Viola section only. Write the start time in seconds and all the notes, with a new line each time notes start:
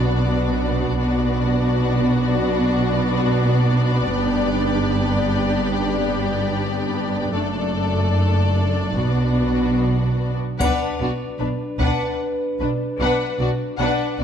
Already playing: B3 D4
0.99 B3 D4
7.35 A3 D4
8.97 B3
10.61 D4
11.00 D4
11.40 D4
11.80 D4
12.61 D4
13.00 D4
13.40 D4
13.80 D4
14.20 D4